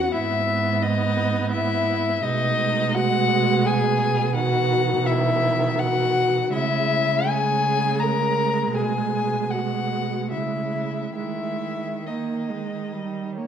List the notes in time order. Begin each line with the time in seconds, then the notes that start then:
Already playing: E2 F#4 F#5
0.12 G#2 B3 E4 E5
0.82 D#4 D#5
1.51 E4 E5
2.22 B2 G#3 D#4 D#5
2.94 F#4 F#5
3.65 G#4 G#5
4.35 D#3 F#4 F#5
5.07 E4 E5
5.80 F#4 F#5
6.51 C#3 G#3 E4 E5
7.28 G#4 G#5
8.00 A#4 A#5
8.74 B2 G#4 G#5
9.51 F#4 F#5
10.31 C#3 E4 E5
11.16 D#3 G#3 E4 E5
12.05 A#3 D#4 D#5
12.49 G#3
12.93 G3
13.35 A#3 C#5